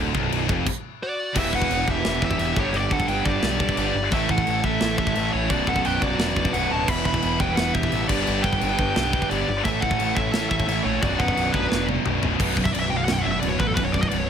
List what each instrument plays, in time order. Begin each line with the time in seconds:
Already playing: picked electric bass D1, distorted electric guitar D2, string section D3 F#3 B3 E4
0.14 picked electric bass B0, distorted electric guitar B1, kick
0.32 crash
0.48 picked electric bass F1, distorted electric guitar F2, kick
0.66 kick, crash
1.03 lead electric guitar F#4 D5
1.34 picked electric bass E1, distorted electric guitar E2 B2 E3, string section E3 G3 B3 G4, lead electric guitar G4, kick, crash, china
1.39 lead electric guitar E5
1.53 picked electric bass E1, lead electric guitar B4 F#5, kick
1.62 kick
1.71 picked electric bass E1, china
1.86 picked electric bass E1, distorted electric guitar E2 B2 E3, lead electric guitar G4, kick
1.91 lead electric guitar E5
2.05 picked electric bass E1, snare, china
2.22 picked electric bass E1, lead electric guitar G4 E5, kick
2.31 kick
2.38 picked electric bass E1, distorted electric guitar E2 B2 E3, china
2.55 picked electric bass G1, distorted electric guitar G2 D3 G3, string section D3 B3, lead electric guitar G4, kick
2.60 lead electric guitar C#5
2.73 picked electric bass G1, lead electric guitar G4 D5, china
2.91 picked electric bass G1, lead electric guitar A4 F#5, kick
3.00 kick
3.07 picked electric bass G1, distorted electric guitar G2 D3 G3, lead electric guitar B4 G5, china
3.25 picked electric bass G1, lead electric guitar G4 D5, kick
3.42 picked electric bass B1, snare, china
3.59 distorted electric guitar G2 D3 G3, kick
3.69 kick
3.76 picked electric bass G1, distorted electric guitar G2 D3 G3, lead electric guitar G4 D5, china
3.95 picked electric bass G1
4.11 picked electric bass A1, distorted electric guitar A2 E3 A3, string section E3 A3 C#4 A4, lead electric guitar A4 E5, kick, china
4.29 picked electric bass A1, lead electric guitar A4 F#5, kick
4.38 kick
4.47 picked electric bass A1, china
4.62 picked electric bass A1, distorted electric guitar A2 E3 A3, lead electric guitar E5, kick
4.67 lead electric guitar A4
4.81 picked electric bass A1, snare, china
4.98 picked electric bass A1, lead electric guitar A4 E5, kick
5.07 kick
5.15 picked electric bass A1, distorted electric guitar A2 E3 A3, china
5.32 picked electric bass A1, distorted electric guitar A2 E3 A3, lead electric guitar C#5
5.36 lead electric guitar E4
5.49 picked electric bass B0, distorted electric guitar B1 F#2 B2, string section F#3 B3 D4 B4, lead electric guitar F#4 D5, kick, china
5.67 picked electric bass B0, lead electric guitar A4 F#5, kick
5.76 kick
5.85 picked electric bass B0, lead electric guitar B4 G5, china
6.01 picked electric bass B0, distorted electric guitar B1 F#2 B2, lead electric guitar F#4 D5, kick
6.19 picked electric bass E1, snare, china
6.36 kick
6.45 kick
6.53 picked electric bass B0, distorted electric guitar B1 F#2 B2, lead electric guitar B4 F#5, china
6.70 picked electric bass D1, distorted electric guitar B1 F#2 B2, lead electric guitar C#5 A5
6.87 picked electric bass E1, distorted electric guitar E2 B2 E3, string section G3 B3 E4, lead electric guitar E5 B5, kick, china, crash
7.05 picked electric bass E1, lead electric guitar E5 B5, kick
7.14 kick
7.22 picked electric bass E1, china
7.39 picked electric bass E1, distorted electric guitar E2 B2 E3, lead electric guitar B4 G5, kick
7.56 picked electric bass E1, lead electric guitar B4 F#5, snare, china
7.74 picked electric bass E1, lead electric guitar G4 E5, kick
7.83 kick
7.91 picked electric bass A1, distorted electric guitar E2 B2 E3, china
8.08 picked electric bass G1, distorted electric guitar G2 D3 G3, string section G3 B3 D4, lead electric guitar G4 D5, kick, crash
8.24 picked electric bass G1, lead electric guitar D5, china
8.28 lead electric guitar G4
8.42 picked electric bass G1, lead electric guitar B4 G5, kick
8.53 kick
8.59 picked electric bass G1, distorted electric guitar G2 D3 G3, china
8.79 picked electric bass G1, kick
8.96 picked electric bass B1, snare, china
9.12 distorted electric guitar G2 D3 G3, kick
9.22 kick
9.30 picked electric bass G1, distorted electric guitar G2 D3 G3, lead electric guitar G4 D5, china
9.48 picked electric bass G1
9.63 picked electric bass A1, distorted electric guitar A2 E3, string section A3 C#4 E4 C#5, lead electric guitar A4 E5, kick, china
9.67 distorted electric guitar A3
9.81 picked electric bass A1, lead electric guitar A4 F#5, kick
9.91 kick
9.99 picked electric bass A1, china
10.15 picked electric bass A1, distorted electric guitar A2 E3 A3, lead electric guitar A4 E5, kick
10.34 picked electric bass A1, snare, china
10.50 picked electric bass A1, lead electric guitar A4 E5, kick
10.60 kick
10.67 picked electric bass A1, distorted electric guitar A2 E3 A3, china
10.84 picked electric bass A#1, distorted electric guitar A2 E3 A3, lead electric guitar E4 C#5
11.02 picked electric bass B0, distorted electric guitar B1 F#2 B2, string section B3 D4 F#4 D5, lead electric guitar F#4 D5, kick, china
11.19 picked electric bass B0, lead electric guitar B4 F#5, kick
11.28 kick
11.37 picked electric bass B0, china
11.52 picked electric bass B0, distorted electric guitar B1 F#2 B2, lead electric guitar D4 B4, kick
11.72 picked electric bass E1, snare
11.89 high tom
12.04 picked electric bass B0, distorted electric guitar B1 F#2 B2, mid tom
12.21 picked electric bass B0, distorted electric guitar B1 F#2 B2, floor tom
12.39 picked electric bass B0, distorted electric guitar B1 F#2 B2, string section D3 B3 F#4 B4, kick, crash
12.56 distorted electric guitar B1 F#2, kick
12.64 lead electric guitar E5, kick
12.73 picked electric bass B0, distorted electric guitar B1 F#2, lead electric guitar D5, crash
12.80 lead electric guitar E5
12.90 picked electric bass B0, distorted electric guitar B1 F#2, lead electric guitar G5
12.97 lead electric guitar F5
13.05 picked electric bass B0, distorted electric guitar B1 F#2, lead electric guitar F#5, snare, crash
13.13 lead electric guitar G5
13.18 lead electric guitar E5 F#5
13.25 picked electric bass F#1, distorted electric guitar B1 F#2
13.32 lead electric guitar E5
13.40 picked electric bass D1, distorted electric guitar B1 F#2, lead electric guitar D5, crash
13.49 lead electric guitar C#5
13.59 picked electric bass A1, distorted electric guitar B1 F#2, lead electric guitar B4, kick
13.67 lead electric guitar A4
13.75 picked electric bass B0, distorted electric guitar B1 F#2 B2, lead electric guitar B4, kick, crash
13.84 lead electric guitar C#5
13.92 distorted electric guitar B1 F#2, lead electric guitar D5, kick
14.01 lead electric guitar D#5, kick
14.09 picked electric bass B0, distorted electric guitar B1 F#2, lead electric guitar D5, crash
14.18 lead electric guitar C#5